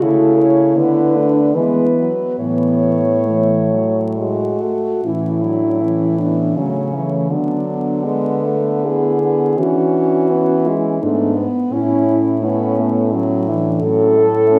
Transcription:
0.03 C#3 A3 E4 A4
0.40 C#5
0.77 D3 B3 B4
1.16 A3 D4
1.54 E3 G#3 B3 B4
1.98 F#3
2.39 A2 E3 B3 C#5
3.27 E3 A3
3.72 F#3
4.18 G#3 F#4
4.62 A3
5.03 A2 E3 C#4 E4
5.42 F#3 D4
5.80 E3 C#4
6.17 B3 D4
6.55 C#3 F#3 A3 C#4
6.94 E3 A3
7.29 D3 F#3 B3 D4
7.66 B3
8.04 G#3 B3
8.44 A3
8.85 B3 E4 G#4
9.22 B3
9.58 E3 C#4 D4 F#4
10.30 B3 C#4
10.67 G#3 E4
11.02 G#2 A3 B3 D4
11.36 B3
11.70 A2 C#4 E4
12.06 C#4
12.41 A3 B3 C#4
12.77 A3 B3
13.12 F#3 C#4
13.47 E3 D4
13.81 A2 F#3 C#4 A4
14.17 A3
14.51 C#4

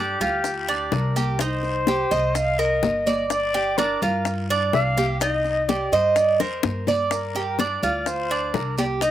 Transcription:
Already playing: G2 D4 G4
0.21 D2 F4, high bongo, high conga, low conga, short guiro, maracas
0.44 high bongo, high conga, long guiro, maracas
0.68 D4, high conga, maracas
0.92 C2 A#4, high bongo, low bongo, high conga, short guiro, maracas
1.16 G4, high bongo, high conga, short guiro, maracas
1.39 D#4 C5, high bongo, long guiro, maracas
1.63 high bongo, high conga, maracas
1.87 G4, high bongo, high conga, short guiro, maracas
2.11 C2 D#5, high bongo, high conga, short guiro, maracas
2.35 F5, high bongo, high conga, long guiro, maracas
2.59 A#4 D#5, high conga, maracas
2.83 G1, high bongo, low bongo, high conga, short guiro, maracas
3.06 D5, high bongo, high conga, short guiro, maracas
3.30 D5, high bongo, high conga, long guiro, maracas
3.54 G4, high bongo, high conga, maracas
3.77 D4 A#4, high bongo, high conga, short guiro, maracas
4.02 G2 F4, high bongo, high conga, low conga, short guiro, maracas
4.25 high bongo, high conga, long guiro, maracas
4.50 D4, high conga, maracas
4.73 C2 F5, high bongo, low bongo, high conga, short guiro, maracas
4.97 G4, high bongo, high conga, short guiro, maracas
5.20 D#4 D#5, high bongo, high conga, long guiro, maracas
5.45 high bongo, high conga, maracas
5.69 G4 D5, high bongo, high conga, short guiro, maracas
5.92 G2 C5 D#5, high bongo, high conga, short guiro, maracas
6.16 D5, high bongo, high conga, long guiro, maracas
6.40 F2 A#4 C5, high bongo, high conga, maracas
6.63 G2, high bongo, high conga, short guiro, maracas
6.87 D5, low bongo, high conga, short guiro, maracas
7.11 A#4, high bongo, high conga, long guiro, maracas
7.35 G4, high bongo, high conga, maracas
7.59 D4 D5, high bongo, high conga, short guiro, maracas
7.83 D2 F4, high bongo, high conga, low conga, short guiro, maracas
8.06 C5, high bongo, high conga, long guiro, maracas
8.30 D4, high conga, maracas
8.54 C2 A#4, high bongo, low bongo, high conga, short guiro, maracas
8.78 G4 D5, high bongo, high conga, short guiro, maracas
9.01 D#4 D#5, high bongo, high conga, long guiro, maracas

